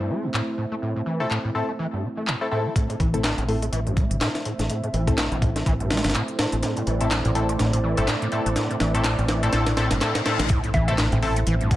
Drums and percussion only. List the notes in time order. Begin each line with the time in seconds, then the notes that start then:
0.34 clap
1.31 clap
2.27 clap
2.76 kick, closed hi-hat
2.90 closed hi-hat
3.00 kick, closed hi-hat
3.14 closed hi-hat
3.24 snare, clap, closed hi-hat
3.38 closed hi-hat
3.49 open hi-hat
3.62 closed hi-hat
3.73 closed hi-hat
3.87 closed hi-hat
3.97 kick, closed hi-hat
4.11 closed hi-hat
4.21 snare, clap, closed hi-hat
4.35 snare, closed hi-hat
4.45 closed hi-hat
4.59 snare, closed hi-hat
4.70 closed hi-hat
4.84 closed hi-hat
4.94 closed hi-hat
5.07 kick, closed hi-hat
5.18 snare, clap, closed hi-hat
5.32 closed hi-hat
5.42 kick, closed hi-hat
5.56 snare, closed hi-hat
5.66 kick, closed hi-hat
5.80 closed hi-hat
5.91 snare, closed hi-hat
5.97 snare, closed hi-hat
6.04 snare, closed hi-hat
6.10 snare, closed hi-hat
6.14 clap, closed hi-hat
6.28 closed hi-hat
6.39 snare, closed hi-hat
6.52 closed hi-hat
6.63 snare, closed hi-hat
6.77 closed hi-hat
6.87 closed hi-hat
7.01 closed hi-hat
7.11 snare, clap, closed hi-hat
7.25 closed hi-hat
7.35 closed hi-hat
7.49 closed hi-hat
7.59 snare, closed hi-hat
7.73 closed hi-hat
7.97 closed hi-hat
8.07 snare, clap, closed hi-hat
8.22 closed hi-hat
8.32 closed hi-hat
8.46 closed hi-hat
8.56 snare, closed hi-hat
8.71 closed hi-hat
8.80 snare, closed hi-hat
8.95 closed hi-hat
9.04 snare, clap, closed hi-hat
9.19 closed hi-hat
9.28 snare, closed hi-hat
9.43 closed hi-hat
9.53 snare, closed hi-hat
9.66 snare, closed hi-hat
9.77 snare, closed hi-hat
9.91 snare, closed hi-hat
10.01 snare, clap, closed hi-hat
10.15 snare, closed hi-hat
10.26 snare, closed hi-hat
10.39 snare, closed hi-hat
10.50 kick, closed hi-hat
10.64 closed hi-hat
10.74 kick, closed hi-hat
10.88 closed hi-hat
10.98 snare, clap, closed hi-hat
11.12 closed hi-hat
11.22 open hi-hat
11.36 closed hi-hat
11.47 closed hi-hat
11.61 closed hi-hat
11.71 kick, closed hi-hat